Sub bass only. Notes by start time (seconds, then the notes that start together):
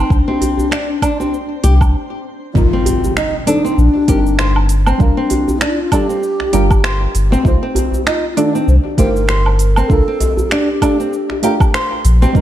0.10 C2
1.64 C2
2.55 C2
3.78 A#1
4.09 G1
5.00 C2
6.53 G1
7.15 G1
7.45 C2
8.68 C2
8.98 G1
9.90 C2
12.05 A#1
12.35 C2